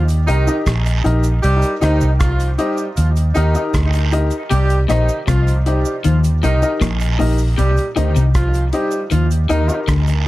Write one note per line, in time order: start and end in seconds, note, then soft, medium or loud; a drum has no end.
0.00 0.27 D#2 loud
0.09 closed hi-hat medium
0.09 cabasa medium
0.27 0.47 C2 medium
0.27 0.58 D#3 medium
0.27 0.58 D#4 medium
0.27 0.46 D#4 medium
0.27 0.46 G4 medium
0.27 0.46 A#4 medium
0.27 0.47 D#5 loud
0.27 closed hi-hat medium
0.27 cabasa medium
0.47 0.66 D#4 medium
0.47 0.66 G4 medium
0.47 0.67 A#4 medium
0.47 0.67 D#5 medium
0.47 cabasa medium
0.66 1.04 A#1 medium
0.66 kick loud
0.66 cross-stick loud
0.66 closed hi-hat medium
0.66 cabasa medium
0.66 long guiro medium
0.86 0.94 A#4 soft
0.86 0.94 D#5 soft
0.86 closed hi-hat soft
0.86 cabasa soft
1.04 1.42 A#1 medium
1.04 1.24 D#4 medium
1.04 1.24 G4 medium
1.04 1.24 A#4 medium
1.04 1.25 D#5 loud
1.04 closed hi-hat medium
1.04 cabasa soft
1.24 closed hi-hat soft
1.24 cabasa medium
1.43 1.63 C2 medium
1.43 1.74 G3 loud
1.43 1.74 G4 loud
1.43 closed hi-hat medium
1.43 cabasa medium
1.62 closed hi-hat soft
1.62 cabasa medium
1.81 2.01 D2 medium
1.81 2.12 D#3 medium
1.81 2.12 D#4 loud
1.81 2.01 D#4 medium
1.81 2.01 G4 medium
1.81 2.01 C5 medium
1.81 2.02 D#5 loud
1.81 cross-stick medium
1.81 closed hi-hat medium
1.81 cabasa medium
2.01 2.57 C2 medium
2.01 cabasa medium
2.20 2.51 F3 medium
2.20 2.51 F4 medium
2.20 kick loud
2.20 cross-stick loud
2.20 closed hi-hat medium
2.20 cabasa medium
2.40 closed hi-hat medium
2.40 cabasa soft
2.58 2.89 G3 medium
2.58 2.78 D#4 medium
2.58 2.89 G4 medium
2.58 2.78 G4 medium
2.58 2.77 C5 medium
2.58 2.77 D#5 loud
2.58 closed hi-hat medium
2.58 cabasa soft
2.77 2.86 C5 soft
2.77 2.86 D#5 soft
2.77 cabasa medium
2.96 3.34 D#2 medium
2.96 3.12 F3 medium
2.96 3.12 F4 medium
2.96 closed hi-hat medium
2.96 cabasa medium
3.16 closed hi-hat medium
3.16 cabasa medium
3.35 3.55 D#2 medium
3.35 3.66 D#3 medium
3.35 3.66 D#4 medium
3.35 3.53 D#4 medium
3.35 3.54 G4 medium
3.35 3.54 A#4 medium
3.35 3.54 D#5 loud
3.35 closed hi-hat medium
3.35 cabasa medium
3.55 3.74 D#4 medium
3.55 3.74 G4 medium
3.55 3.74 A#4 medium
3.55 3.74 D#5 medium
3.55 cabasa medium
3.74 4.30 D2 medium
3.74 kick loud
3.74 cross-stick loud
3.74 closed hi-hat medium
3.74 cabasa medium
3.74 long guiro medium
3.93 4.01 A#4 soft
3.93 4.01 D#5 soft
3.93 closed hi-hat soft
3.93 cabasa medium
4.12 4.32 D#4 medium
4.12 4.32 G4 medium
4.12 4.32 A#4 medium
4.12 4.32 D#5 loud
4.12 closed hi-hat medium
4.12 cabasa soft
4.31 closed hi-hat soft
4.31 cabasa medium
4.50 4.88 C2 medium
4.50 4.74 C3 medium
4.50 4.81 G3 loud
4.50 4.81 G4 loud
4.50 closed hi-hat medium
4.50 cabasa medium
4.70 closed hi-hat soft
4.70 cabasa soft
4.88 5.08 A#1 medium
4.88 5.00 A#2 medium
4.88 5.20 D#3 medium
4.88 5.09 D#4 medium
4.88 5.20 D#4 medium
4.88 5.09 G4 medium
4.88 5.09 C5 medium
4.88 5.09 D#5 loud
4.88 cross-stick medium
4.88 closed hi-hat medium
4.88 cabasa soft
5.09 cabasa medium
5.27 5.84 C2 loud
5.27 5.50 C3 medium
5.27 5.58 F3 medium
5.27 5.58 F4 medium
5.27 kick loud
5.27 cross-stick loud
5.27 closed hi-hat medium
5.27 cabasa medium
5.47 closed hi-hat medium
5.47 cabasa soft
5.65 5.96 G3 medium
5.65 5.86 D#4 medium
5.65 5.97 G4 medium
5.65 5.86 G4 medium
5.65 5.85 C5 medium
5.65 5.85 D#5 medium
5.65 closed hi-hat medium
5.65 cabasa soft
5.85 5.93 C5 soft
5.85 5.94 D#5 soft
5.85 cabasa medium
6.04 6.42 D#2 loud
6.04 6.28 D#3 medium
6.04 6.20 F3 medium
6.04 6.20 F4 medium
6.04 closed hi-hat medium
6.04 cabasa medium
6.24 closed hi-hat medium
6.24 cabasa medium
6.43 6.62 C2 medium
6.43 6.55 C3 medium
6.43 6.74 D#3 medium
6.43 6.60 D#4 medium
6.43 6.74 D#4 medium
6.43 6.61 G4 medium
6.43 6.61 A#4 medium
6.43 6.62 D#5 medium
6.43 closed hi-hat medium
6.43 cabasa medium
6.62 6.81 D#4 medium
6.62 6.81 G4 medium
6.62 6.81 A#4 medium
6.62 6.82 D#5 medium
6.62 cabasa medium
6.81 7.18 A#1 loud
6.81 7.04 A#2 medium
6.81 kick loud
6.81 cross-stick loud
6.81 closed hi-hat medium
6.81 cabasa medium
6.81 long guiro medium
7.00 7.08 A#4 soft
7.00 7.08 D#5 soft
7.00 closed hi-hat soft
7.00 cabasa medium
7.19 7.57 A#1 medium
7.19 7.42 A#2 medium
7.19 7.39 D#4 medium
7.19 7.39 G4 medium
7.19 7.39 A#4 medium
7.19 7.39 D#5 loud
7.19 open hi-hat medium
7.19 cabasa soft
7.38 cabasa medium
7.57 7.77 C2 loud
7.57 7.70 C3 medium
7.57 7.88 G3 medium
7.57 7.88 G4 loud
7.57 closed hi-hat medium
7.57 cabasa medium
7.77 closed hi-hat soft
7.77 cabasa soft
7.96 8.16 D2 medium
7.96 8.08 D3 medium
7.96 8.27 D#3 medium
7.96 8.16 D#4 medium
7.96 8.27 D#4 medium
7.96 8.16 G4 medium
7.96 8.16 C5 medium
7.96 8.16 D#5 loud
7.96 closed hi-hat medium
7.96 cabasa soft
8.16 8.71 C2 medium
8.16 8.39 C3 medium
8.16 closed hi-hat soft
8.16 cabasa medium
8.34 8.66 F3 medium
8.34 8.66 F4 loud
8.34 kick loud
8.34 cross-stick loud
8.34 closed hi-hat medium
8.34 cabasa medium
8.54 closed hi-hat medium
8.54 cabasa soft
8.73 9.04 G3 medium
8.73 8.93 D#4 medium
8.73 9.04 G4 medium
8.73 8.93 G4 medium
8.73 8.91 C5 medium
8.73 8.91 D#5 medium
8.73 closed hi-hat medium
8.73 cabasa soft
8.91 9.00 C5 soft
8.91 9.00 D#5 soft
8.91 cabasa medium
9.11 9.49 D#2 medium
9.11 9.34 D#3 medium
9.11 9.27 F3 medium
9.11 9.27 F4 medium
9.11 closed hi-hat medium
9.11 cabasa medium
9.31 closed hi-hat medium
9.31 cabasa medium
9.49 9.69 D#2 medium
9.49 9.61 D#3 medium
9.49 9.81 D#3 medium
9.49 9.67 D#4 medium
9.49 9.81 D#4 medium
9.49 9.67 G4 medium
9.49 9.68 A#4 medium
9.49 9.68 D#5 medium
9.49 closed hi-hat medium
9.49 cabasa medium
9.68 9.88 D#4 medium
9.68 9.88 G4 medium
9.68 9.88 A#4 medium
9.68 9.88 D#5 medium
9.68 cabasa medium
9.88 10.28 D2 loud
9.88 10.11 D3 medium
9.88 kick loud
9.88 cross-stick loud
9.88 closed hi-hat medium
9.88 cabasa medium
9.88 long guiro medium
10.07 10.15 A#4 soft
10.07 10.15 D#5 soft
10.07 closed hi-hat soft
10.07 cabasa medium